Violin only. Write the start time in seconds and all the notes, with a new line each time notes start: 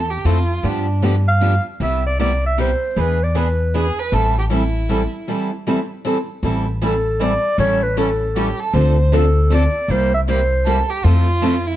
Already playing: A4
0.10 G4
0.25 F4
0.64 D4
3.76 G#4
3.99 B4
4.14 A4
4.39 G4
4.52 E4
8.36 G4
8.59 A4
8.73 C5
10.66 A4
10.90 G4
11.05 F4
11.67 E4